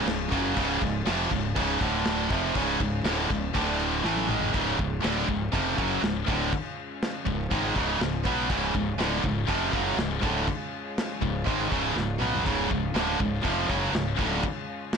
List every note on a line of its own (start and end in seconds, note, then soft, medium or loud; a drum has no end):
0.00 1.77 C#3 medium
0.00 1.77 G#3 medium
0.00 1.77 C#4 medium
0.00 1.77 F4 medium
0.06 0.29 C#1 medium
0.06 0.27 C#2 medium
0.06 0.27 G#2 medium
0.06 snare loud
0.06 crash medium
0.32 0.55 F#1 medium
0.32 0.56 F#2 medium
0.32 0.56 C#3 loud
0.32 0.56 F#3 loud
0.32 kick loud
0.32 crash medium
0.56 0.80 C#1 loud
0.56 0.80 C#2 loud
0.56 0.81 G#2 loud
0.56 0.81 C#3 loud
0.56 kick loud
0.56 crash medium
0.82 1.05 C#1 medium
0.82 1.01 C#2 medium
0.82 1.01 G#2 medium
0.82 kick loud
0.82 crash medium
1.06 1.30 F1 loud
1.06 1.30 F2 medium
1.06 1.30 C3 loud
1.06 1.30 F3 loud
1.06 snare loud
1.06 crash medium
1.31 1.54 C#1 medium
1.31 1.51 C#2 medium
1.31 1.51 G#2 medium
1.31 kick medium
1.31 crash medium
1.56 1.79 C#1 loud
1.56 1.80 C#2 loud
1.56 1.80 G#2 medium
1.56 1.80 C#3 loud
1.56 kick loud
1.56 crash medium
1.81 2.27 D1 loud
1.81 2.30 D2 loud
1.81 2.30 A2 loud
1.81 2.30 D3 medium
1.81 2.30 D3 loud
1.81 2.30 A3 medium
1.81 2.30 D4 medium
1.81 2.30 D5 medium
1.81 kick loud
1.81 crash medium
2.05 snare loud
2.05 crash medium
2.30 2.54 F1 loud
2.30 2.55 F2 loud
2.30 2.55 C3 medium
2.30 3.53 C#3 medium
2.30 2.55 F3 loud
2.30 3.53 G#3 medium
2.30 3.53 C#4 medium
2.30 3.53 F4 medium
2.30 kick loud
2.30 crash medium
2.55 2.79 C#1 loud
2.55 2.79 C#2 medium
2.55 2.79 G#2 loud
2.55 2.80 C#3 loud
2.55 kick loud
2.55 crash medium
2.80 3.03 C#1 medium
2.80 3.00 C#2 medium
2.80 3.00 G#2 medium
2.80 kick medium
2.80 crash medium
3.05 3.28 D1 loud
3.05 3.29 D2 medium
3.05 3.29 A2 loud
3.05 3.29 D3 loud
3.05 snare loud
3.05 crash medium
3.29 3.53 C#1 medium
3.29 3.49 C#2 medium
3.29 3.49 G#2 medium
3.29 kick medium
3.29 crash medium
3.54 4.01 D1 loud
3.54 4.03 D2 medium
3.54 4.03 A2 loud
3.54 4.04 D3 medium
3.54 4.04 A3 medium
3.54 4.03 D4 medium
3.54 4.04 D5 medium
3.54 kick loud
3.54 crash medium
3.79 crash medium
4.03 4.27 A1 loud
4.03 4.28 A2 medium
4.03 4.51 C#3 medium
4.03 4.28 E3 loud
4.03 4.51 G#3 medium
4.03 4.28 A3 loud
4.03 4.51 C#4 medium
4.03 4.52 F4 medium
4.03 snare medium
4.17 high tom medium
4.29 4.52 G#1 loud
4.29 4.53 G#2 medium
4.29 4.53 D#3 loud
4.29 4.53 G#3 loud
4.29 mid tom loud
4.41 floor tom medium
4.52 4.77 C#1 loud
4.52 4.77 C#2 medium
4.52 4.77 G#2 loud
4.52 14.97 C#3 medium
4.52 4.78 C#3 loud
4.52 14.97 G#3 medium
4.52 14.97 C#4 medium
4.52 14.97 F4 medium
4.52 kick loud
4.52 crash medium
4.78 5.02 C#1 medium
4.78 4.98 C#2 medium
4.78 4.98 G#2 medium
4.78 kick loud
5.02 5.27 D1 loud
5.02 5.26 D2 medium
5.02 5.27 A2 loud
5.02 5.27 D3 loud
5.02 snare loud
5.02 crash medium
5.28 5.51 C#1 medium
5.28 5.48 C#2 medium
5.28 5.48 G#2 medium
5.28 kick medium
5.52 5.76 F1 loud
5.52 5.76 F2 medium
5.52 5.77 C3 medium
5.52 5.77 F3 loud
5.52 kick loud
5.52 crash medium
5.77 6.01 F#1 medium
5.77 6.01 F#2 loud
5.77 6.02 C#3 medium
5.77 6.02 F#3 loud
5.77 kick loud
6.02 6.25 C#1 medium
6.02 6.22 C#2 medium
6.02 6.22 G#2 medium
6.02 snare loud
6.02 crash medium
6.27 6.50 D1 loud
6.27 6.51 D2 medium
6.27 6.51 A2 medium
6.27 6.51 D3 loud
6.27 kick loud
6.53 kick loud
6.53 crash medium
7.02 snare loud
7.02 crash medium
7.26 7.49 C#1 medium
7.26 7.46 C#2 medium
7.26 7.46 G#2 medium
7.26 kick medium
7.51 7.74 G#1 loud
7.51 7.75 G#2 medium
7.51 7.75 D#3 medium
7.51 7.75 G#3 loud
7.51 kick loud
7.51 crash medium
7.75 7.99 C#1 loud
7.75 7.99 C#2 medium
7.75 8.00 G#2 loud
7.75 8.00 C#3 loud
7.75 kick loud
8.00 8.23 C#1 medium
8.00 8.21 C#2 medium
8.00 8.21 G#2 medium
8.00 snare loud
8.00 crash medium
8.25 8.48 B1 loud
8.25 8.49 B2 medium
8.25 8.49 F#3 loud
8.25 8.49 B3 loud
8.25 kick loud
8.49 8.73 C#1 medium
8.49 8.73 C#2 loud
8.49 8.74 G#2 loud
8.49 8.74 C#3 loud
8.49 kick loud
8.49 crash medium
8.75 8.97 C#1 medium
8.75 8.94 C#2 medium
8.75 8.94 G#2 medium
8.75 kick loud
8.98 9.21 D1 loud
8.98 9.22 D2 loud
8.98 9.23 A2 loud
8.98 9.23 D3 loud
8.98 snare loud
8.98 crash medium
9.22 9.47 C#1 medium
9.22 9.43 C#2 medium
9.22 9.43 G#2 medium
9.22 kick medium
9.47 9.72 F1 loud
9.47 9.71 F2 medium
9.47 9.72 C3 loud
9.47 9.72 F3 loud
9.47 kick loud
9.47 crash medium
9.73 9.96 F#1 medium
9.73 9.97 F#2 loud
9.73 9.97 C#3 loud
9.73 9.98 F#3 loud
9.73 kick loud
9.97 10.20 C#1 medium
9.97 10.18 C#2 medium
9.97 10.18 G#2 medium
9.97 snare loud
9.97 crash medium
10.22 10.46 D1 loud
10.22 10.46 D2 medium
10.22 10.46 A2 loud
10.22 10.47 D3 loud
10.22 kick loud
10.48 kick loud
10.48 crash medium
10.98 snare loud
10.98 crash medium
11.22 11.45 C#1 medium
11.22 11.42 C#2 medium
11.22 11.42 G#2 medium
11.22 kick medium
11.46 11.70 G#1 loud
11.46 11.70 G#2 medium
11.46 11.71 D#3 medium
11.46 11.71 G#3 loud
11.46 kick loud
11.46 crash medium
11.72 11.94 C#1 loud
11.72 11.95 C#2 medium
11.72 11.95 G#2 loud
11.72 11.96 C#3 loud
11.72 kick loud
11.96 12.19 C#1 medium
11.96 12.16 C#2 medium
11.96 12.16 G#2 medium
11.96 snare medium
12.21 12.44 B1 medium
12.21 12.45 B2 medium
12.21 12.45 F#3 medium
12.21 12.45 B3 medium
12.21 mid tom loud
12.34 floor tom medium
12.46 12.69 C#1 loud
12.46 12.70 C#2 loud
12.46 12.70 G#2 loud
12.46 12.71 C#3 loud
12.46 kick loud
12.46 crash medium
12.71 12.94 C#1 medium
12.71 12.91 C#2 medium
12.71 12.91 G#2 medium
12.71 kick loud
12.95 13.18 D1 loud
12.95 13.19 D2 medium
12.95 13.20 A2 loud
12.95 13.19 D3 loud
12.95 snare loud
12.95 crash medium
13.20 13.43 C#1 medium
13.20 13.39 C#2 medium
13.20 13.40 G#2 medium
13.20 kick medium
13.45 13.68 F1 loud
13.45 13.68 F2 loud
13.45 13.69 C3 loud
13.45 13.69 F3 loud
13.45 kick loud
13.45 crash medium
13.69 13.92 F#1 loud
13.69 13.93 F#2 medium
13.69 13.93 C#3 loud
13.69 13.94 F#3 loud
13.69 kick loud
13.93 14.16 C#1 medium
13.93 14.14 C#2 medium
13.93 14.14 G#2 medium
13.93 snare loud
13.93 crash medium
14.19 14.42 D1 loud
14.19 14.43 D2 medium
14.19 14.43 A2 loud
14.19 14.43 D3 loud
14.19 kick loud
14.43 kick loud
14.43 crash medium
14.93 snare loud
14.93 crash medium